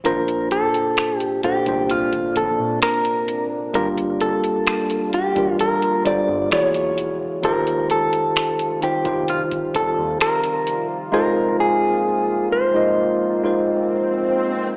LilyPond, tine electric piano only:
\new Staff \with { instrumentName = "Tine electric piano" } { \time 4/4 \key bes \major \tempo 4 = 65 <bes, bes d' f' c''>4~ <bes, bes d' f' c''>16 r16 <bes, bes d' a' c''>16 <bes, bes d' f' c''>4.~ <bes, bes d' f' c''>16 r8 | <g bes d' f' g'>4. r16 <g d' f' g' bes'>8. <g d' f' a' c''>8 <e e' fis' gis' cis''>8. r16 | <ees ees' f' g' c''>4~ <ees ees' f' g' c''>16 r16 <ees ees' f' g' c''>16 <ees ees' f' g' c''>4.~ <ees ees' f' g' c''>16 r8 | <aes ees' f' bes' c''>4. r16 <aes ees' f' bes' ees''>8. <aes ees' f' bes' c''>4~ <aes ees' f' bes' c''>16 r16 | }